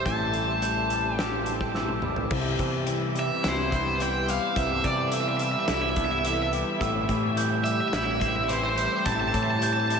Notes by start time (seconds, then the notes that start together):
Already playing: C3 E3 G3 A3 C4 E4 G4 G6
0.06 A1 A2 A5, kick, closed hi-hat
0.33 E3, closed hi-hat
0.62 E3 G6, closed hi-hat
0.90 G3, closed hi-hat
1.15 G4 G5, snare, closed hi-hat
1.20 E6
1.46 C4, closed hi-hat
1.60 kick, snare
1.75 E3 E6, snare
1.89 high tom
2.02 G3, mid tom
2.16 floor tom
2.30 C2 C3 G3 B3 E4 G4, kick, crash
2.59 C3 E3, kick, closed hi-hat
2.87 E3, closed hi-hat
3.15 G3, closed hi-hat
3.19 E5
3.43 C2 E4, snare, closed hi-hat
3.48 C5
3.71 B3, kick, closed hi-hat
3.75 C5
3.99 E3 G5, closed hi-hat
4.27 G3 F5, closed hi-hat
4.55 C2 C3 A4 E5, kick, closed hi-hat
4.84 C3 E3 D5, kick, closed hi-hat
5.12 E3 E5, closed hi-hat
5.21 E5
5.28 E5
5.37 G3 E5, closed hi-hat
5.42 E5
5.52 E5
5.59 E5
5.66 C2 E4 E5, snare, closed hi-hat
5.74 E5
5.82 E5
5.89 E5
5.96 B3 E5, kick, closed hi-hat
6.05 E5
6.12 E5
6.19 E5
6.25 E3 E5, closed hi-hat
6.33 E5
6.42 E5
6.52 G3, closed hi-hat
6.79 A1 A2 A3 G4 E6, kick, closed hi-hat
7.08 A2 E3, kick, closed hi-hat
7.36 E3 G6, closed hi-hat
7.64 G3 E5, closed hi-hat
7.71 E5
7.80 E5
7.88 E5
7.93 A1 E4 E5 E6, snare, closed hi-hat
8.04 E5
8.11 E5
8.20 C4 E5, kick, closed hi-hat
8.28 E5
8.36 E5
8.44 C5 E5
8.48 E3, closed hi-hat
8.55 C5
8.63 C5
8.69 C5
8.76 G3 C5 G6, closed hi-hat
8.85 C5
8.92 C5
8.99 C5
9.05 A1 A2 A5, kick, closed hi-hat
9.12 A5
9.20 A5
9.28 A5
9.33 A2 E3 A5, kick, closed hi-hat
9.43 A5
9.50 A5
9.59 E3 A5 G6, closed hi-hat
9.66 A5
9.73 A5
9.80 A5
9.88 G3 A5, closed hi-hat
9.95 A5